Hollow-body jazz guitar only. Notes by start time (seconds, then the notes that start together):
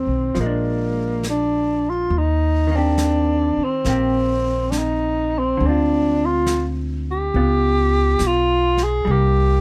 Already playing: D#3 G#3 C4
0.35 F3
0.41 G#3
0.46 D4
2.67 D#3
2.72 A#3 C4
2.78 G4
3.87 A#3 C4 G4
5.57 D3
5.62 G#3 C4
5.69 F4
7.36 B3 F4
9.05 G3
9.11 A#3